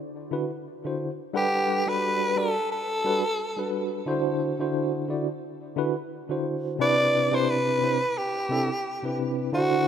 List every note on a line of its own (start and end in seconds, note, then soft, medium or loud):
0.31 0.49 D3 medium
0.31 0.49 D4 medium
0.31 0.50 E4 medium
0.31 0.50 F#4 medium
0.31 0.50 B4 medium
0.85 1.09 D3 medium
0.85 1.09 D4 medium
0.85 1.09 E4 medium
0.85 1.10 F#4 medium
0.85 1.10 C5 medium
1.33 1.83 G3 medium
1.33 1.83 D4 medium
1.33 1.91 G4 loud
1.33 1.83 A4 medium
1.33 1.84 B4 loud
1.33 1.83 F#5 medium
1.87 2.33 G3 medium
1.87 2.33 D4 medium
1.87 2.33 F#4 medium
1.87 2.34 A4 medium
1.87 2.39 B4 loud
1.87 2.34 B4 medium
2.36 2.54 G3 medium
2.36 2.54 D4 medium
2.36 2.54 F#4 medium
2.36 2.55 A4 medium
2.36 2.71 A4 loud
2.36 2.55 D5 medium
2.72 3.70 A4 loud
3.04 3.22 G3 medium
3.04 3.22 D4 medium
3.04 3.23 F#4 medium
3.04 3.23 A4 medium
3.04 3.23 B4 loud
3.57 4.03 G3 medium
3.57 4.03 D4 medium
3.57 4.03 F#4 medium
3.57 4.04 A4 medium
3.57 4.04 B4 medium
4.06 4.55 D3 medium
4.06 4.55 D4 medium
4.06 4.56 E4 medium
4.06 4.56 F#4 medium
4.06 4.56 C5 loud
4.59 5.05 D3 medium
4.59 5.05 D4 medium
4.59 5.06 E4 medium
4.59 5.06 F#4 medium
4.59 5.06 C5 medium
5.08 5.26 D3 medium
5.08 5.27 D4 medium
5.08 5.27 E4 medium
5.08 5.27 F#4 medium
5.08 5.27 D5 medium
5.76 5.94 D3 medium
5.76 5.95 D4 medium
5.76 5.95 E4 medium
5.76 5.95 F#4 medium
5.76 5.96 B4 loud
6.29 6.76 D3 medium
6.29 6.76 D4 medium
6.29 6.76 E4 medium
6.29 6.76 F#4 medium
6.29 6.77 C5 medium
6.79 7.28 C3 medium
6.79 7.28 C4 medium
6.79 7.29 D4 medium
6.79 7.29 E4 medium
6.79 7.29 B4 loud
6.79 7.36 D5 loud
7.32 7.78 C3 medium
7.32 7.78 C4 medium
7.32 7.78 D4 medium
7.32 7.79 E4 medium
7.32 7.79 B4 loud
7.32 7.51 C5 loud
7.50 8.19 B4 loud
7.81 7.99 C3 medium
7.81 7.99 C4 medium
7.81 8.00 D4 medium
7.81 8.00 E4 medium
7.81 8.00 C5 medium
8.18 9.19 G4 medium
8.49 8.67 C3 medium
8.49 8.68 C4 medium
8.49 8.68 D4 medium
8.49 8.68 E4 medium
8.49 8.69 A4 loud
9.03 9.49 C3 medium
9.03 9.49 C4 medium
9.03 9.49 D4 medium
9.03 9.50 E4 medium
9.03 9.50 B4 medium
9.52 9.88 D3 medium
9.52 9.88 D4 medium
9.52 9.88 E4 medium
9.52 9.88 F#4 medium
9.52 9.88 F#4 loud
9.52 9.88 C5 loud